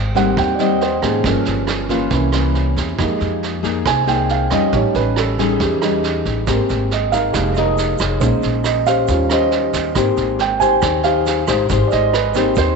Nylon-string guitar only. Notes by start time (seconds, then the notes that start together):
Already playing: G#2
0.15 G3 C4 D#4
0.37 D#3
0.59 G3 C4 D#4
1.03 F3 A#3 C#4
1.24 G2
1.89 E3 A#3 C#4
2.11 C3
2.32 E3 A#3 C#4
2.98 F3 A#3 D#4 G#4
3.63 A#3 D#4 G#4
3.85 C3
4.06 A#3 D#4 G#4
4.51 G3 C#4 D#4
4.72 A2
5.39 G3 C#4 D#4
5.60 E3
5.82 G3 C#4 D#4
6.47 G#3 C4 G4 A#4
7.12 D#4 G#4 A#4
7.34 F3
7.58 D#4 G#4 A#4
8.01 D#4 G#4 C#5
8.23 A#3
8.86 C#4 G4 C5
9.08 D#3
9.30 C#4 G4 C5
9.95 G#3 D#4 G4 C5
10.60 D#4 G4 C5
10.83 D#3
11.04 D#4 G4 C5
11.47 D#4 G4 C5
11.70 G#3 D#4 G4 C5
12.35 D#4 G4 C5
12.57 D#3